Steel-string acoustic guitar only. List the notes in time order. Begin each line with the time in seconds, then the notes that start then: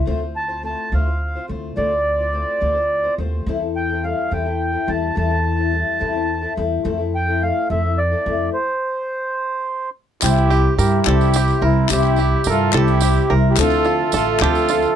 0.05 D3 A3 C4 F4 C5
0.20 C4 C5
0.48 C4 F4 C5
0.63 A3 C4 F4 C5
0.92 D3 A3 C4 F4 C5
1.06 C4 F4 C5
1.35 C4 F4 C5
1.48 A3 C4 F4 C5
1.76 D3 A3 C4 F4 C5
1.91 C4 F4 C5
2.18 C4 F4 C5
2.32 A3 C4 F4 C5
2.60 D3 A3 C4 F4 C5
2.75 C4 F4 C5
3.04 C4 F4 C5
3.18 A3 C4 F4 C5
3.47 E3 G3 C4 E4 A4
3.60 C4 E4 A4
3.89 C4 E4 A4
4.04 G3 C4 E4 A4
4.30 E3 G3 C4 E4 A4
4.45 C4 E4 A4
4.72 C4 E4 A4
4.87 G3 C4 E4 A4
5.15 E3 G3 C4 E4 A4
5.29 C4 E4 A4
5.57 C4 E4 A4
5.71 G3 C4 E4 A4
5.99 E3 G3 C4 E4 A4
6.13 C4 E4 A4
6.41 C4 E4 A4
6.56 G3 C4 E4 A4
6.84 F3 A3 C4 E4 A4
6.98 C4 E4 A4
7.27 C4 E4 A4
7.41 A3 C4 E4 A4
7.70 F3 A3 C4 E4 A4
7.83 C4 E4 A4
8.12 C4 E4 A4
8.27 A3 C4 E4 A4
10.22 C3 E3 G3 C4 E4 C5
10.51 G3 C4 E4 C5
10.79 G3 C4 E4 C5
11.07 C3 E3 G3 C4 E4 C5
11.35 G3 C4 E4 C5
11.61 G3 C4 E4 C5
11.91 C3 E3 G3 C4 E4 C5
12.18 C4 E4 C5
12.47 G3 C4 E4 C5
12.74 C3 E3 G3 C4 E4 C5
13.02 G3 C4 E4 C5
13.30 G3 C4 E4 C5
13.58 D3 A3 C4 F4 A4
13.86 C4 F4 A4
14.14 A3 C4 F4 A4
14.42 D3 A3 C4 F4 A4
14.70 A3 C4 F4 A4